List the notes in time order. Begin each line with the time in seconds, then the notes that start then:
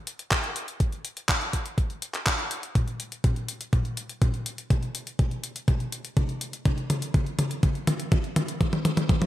0.07 closed hi-hat
0.19 closed hi-hat
0.31 kick, clap, closed hi-hat
0.44 closed hi-hat
0.56 closed hi-hat
0.68 closed hi-hat
0.80 kick, closed hi-hat
0.92 closed hi-hat
1.05 closed hi-hat
1.17 closed hi-hat
1.29 kick, clap, closed hi-hat
1.41 closed hi-hat
1.53 kick, closed hi-hat
1.66 closed hi-hat
1.78 kick, closed hi-hat
1.90 closed hi-hat
2.02 closed hi-hat
2.14 clap, closed hi-hat
2.27 kick, clap, closed hi-hat
2.39 closed hi-hat
2.51 closed hi-hat
2.63 closed hi-hat
2.75 kick, closed hi-hat, mid tom
2.88 closed hi-hat
3.00 closed hi-hat
3.12 closed hi-hat
3.24 kick, closed hi-hat, mid tom
3.36 closed hi-hat
3.48 closed hi-hat
3.61 closed hi-hat
3.73 kick, closed hi-hat, mid tom
3.85 closed hi-hat
3.97 closed hi-hat
4.09 closed hi-hat
4.22 kick, closed hi-hat, mid tom
4.34 closed hi-hat
4.46 closed hi-hat
4.58 closed hi-hat
4.70 kick, closed hi-hat, mid tom
4.83 closed hi-hat
4.95 closed hi-hat
5.07 closed hi-hat
5.19 kick, closed hi-hat, mid tom
5.31 closed hi-hat
5.44 closed hi-hat
5.56 closed hi-hat
5.68 kick, closed hi-hat, mid tom
5.80 closed hi-hat
5.92 closed hi-hat
6.05 closed hi-hat
6.17 kick, closed hi-hat, mid tom
6.29 closed hi-hat
6.41 closed hi-hat
6.53 closed hi-hat
6.65 kick, closed hi-hat, mid tom
6.78 closed hi-hat
6.90 closed hi-hat, mid tom
7.02 closed hi-hat
7.14 kick, closed hi-hat, mid tom
7.26 closed hi-hat
7.39 closed hi-hat, mid tom
7.51 closed hi-hat
7.63 kick, closed hi-hat, mid tom
7.75 closed hi-hat
7.87 closed hi-hat, mid tom
8.00 closed hi-hat
8.12 kick, closed hi-hat, mid tom
8.24 closed hi-hat
8.36 closed hi-hat, mid tom
8.48 closed hi-hat
8.61 kick, closed hi-hat, mid tom
8.73 closed hi-hat, mid tom
8.85 closed hi-hat, mid tom
8.97 closed hi-hat, mid tom
9.09 kick, closed hi-hat, mid tom
9.22 closed hi-hat, mid tom